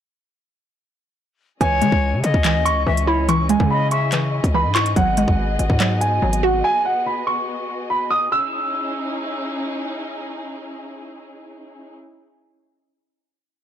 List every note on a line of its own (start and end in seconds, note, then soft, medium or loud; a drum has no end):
1.61 1.83 C#2 loud
1.61 2.43 E3 medium
1.61 4.93 C#4 medium
1.61 4.93 E4 medium
1.61 8.28 G#4 medium
1.61 2.20 C#5 loud
1.61 8.28 D#5 medium
1.61 2.62 G#5 loud
1.61 kick loud
1.61 closed hi-hat medium
1.82 1.92 E3 loud
1.82 2.87 G#3 medium
1.82 closed hi-hat medium
1.92 2.15 C#2 loud
1.92 kick loud
2.13 2.23 C#3 loud
2.24 2.34 C#3 loud
2.24 2.83 D#5 medium
2.24 closed hi-hat medium
2.34 2.57 C#2 loud
2.34 kick loud
2.44 2.85 E3 medium
2.44 clap loud
2.44 closed hi-hat medium
2.55 2.72 D#2 medium
2.65 3.05 C#6 loud
2.65 closed hi-hat medium
2.71 2.86 C#2 loud
2.87 3.57 C#2 loud
2.87 3.27 E3 medium
2.87 3.07 E5 medium
2.97 closed hi-hat medium
3.07 4.12 E4 medium
3.07 3.27 C#5 medium
3.07 3.23 B5 medium
3.29 4.11 E3 loud
3.29 3.45 C#6 medium
3.29 closed hi-hat medium
3.49 4.54 G#3 medium
3.49 3.66 G#5 medium
3.49 closed hi-hat medium
3.60 4.41 C#3 loud
3.60 kick loud
3.70 3.91 D#5 medium
3.70 3.86 B5 medium
3.91 4.12 E5 medium
3.91 4.51 C#6 medium
3.91 closed hi-hat medium
4.12 4.53 E3 medium
4.12 clap medium
4.12 closed hi-hat medium
4.44 4.66 C#2 loud
4.44 kick loud
4.44 closed hi-hat medium
4.54 4.96 E3 medium
4.54 4.70 B5 loud
4.65 4.95 G#2 loud
4.75 4.96 E4 medium
4.75 4.91 C#6 loud
4.75 clap loud
4.75 closed hi-hat medium
4.86 closed hi-hat medium
4.96 5.27 G#1 loud
4.96 5.79 F#3 medium
4.96 8.29 B3 medium
4.96 8.29 F#4 medium
4.96 5.97 F#5 loud
4.96 kick loud
4.96 closed hi-hat medium
5.17 6.22 G#3 medium
5.17 closed hi-hat medium
5.28 5.58 G#1 loud
5.28 kick loud
5.59 5.69 G#1 loud
5.59 closed hi-hat medium
5.70 6.20 G#2 loud
5.70 kick medium
5.80 6.21 F#3 medium
5.80 clap loud
5.80 closed hi-hat medium
6.01 6.40 G#5 medium
6.01 closed hi-hat medium
6.22 6.63 G#1 loud
6.22 7.27 F#3 medium
6.33 closed hi-hat medium
6.43 7.48 F#4 loud
6.43 6.59 F#5 medium
6.64 6.80 G#5 loud
6.85 7.01 F#5 medium
7.06 7.22 B5 medium
7.27 7.86 C#6 medium
7.90 8.06 B5 medium
8.10 8.27 D#6 medium
8.32 11.92 C#4 medium
8.32 11.92 D#4 medium
8.32 11.92 E4 medium
8.32 11.92 G#4 medium
8.32 9.54 E6 medium